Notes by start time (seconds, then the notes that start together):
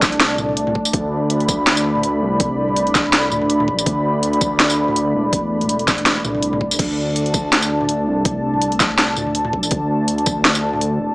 Already playing: C2 A3 D4 D5 A5
0.02 kick, snare, tambourine
0.12 closed hi-hat
0.20 snare, closed hi-hat
0.38 mid tom, tambourine
0.49 mid tom
0.57 closed hi-hat
0.67 mid tom
0.75 kick
0.85 tambourine
0.93 D2 B5, kick, closed hi-hat
1.30 closed hi-hat
1.40 closed hi-hat
1.48 kick, tambourine
1.67 D2, snare, closed hi-hat
1.77 tambourine
1.95 mid tom
2.03 closed hi-hat
2.22 C2
2.40 kick, closed hi-hat
2.68 mid tom
2.76 closed hi-hat
2.87 closed hi-hat
2.95 kick, snare, tambourine
3.13 snare, closed hi-hat
3.32 D2, mid tom, tambourine
3.42 mid tom
3.50 closed hi-hat
3.60 mid tom
3.68 kick
3.79 tambourine
3.86 D2, kick, closed hi-hat
4.23 closed hi-hat
4.33 closed hi-hat
4.41 kick, tambourine
4.60 D2, snare, closed hi-hat
4.70 tambourine
4.88 mid tom
4.96 closed hi-hat
5.14 E1
5.33 kick, closed hi-hat
5.61 closed hi-hat, mid tom
5.69 closed hi-hat
5.79 closed hi-hat
5.88 kick, snare, tambourine
5.98 closed hi-hat
6.06 snare, closed hi-hat
6.24 C2, mid tom, tambourine
6.35 mid tom
6.43 closed hi-hat
6.53 mid tom
6.61 kick
6.71 tambourine
6.79 D2 A5, kick, closed hi-hat, crash
7.16 closed hi-hat
7.26 closed hi-hat
7.34 kick, tambourine
7.52 D2, snare, closed hi-hat
7.62 tambourine
7.81 mid tom
7.89 closed hi-hat
8.07 C2
8.25 kick, closed hi-hat
8.54 mid tom
8.62 closed hi-hat
8.72 closed hi-hat
8.80 kick, snare, tambourine
8.98 snare, closed hi-hat
9.17 D2, mid tom, tambourine
9.27 mid tom
9.35 closed hi-hat
9.45 mid tom
9.53 kick
9.63 tambourine
9.71 D2, kick, closed hi-hat
10.08 closed hi-hat
10.18 closed hi-hat
10.26 kick, tambourine
10.45 D2, snare, closed hi-hat
10.55 tambourine
10.73 mid tom
10.81 closed hi-hat
11.00 E1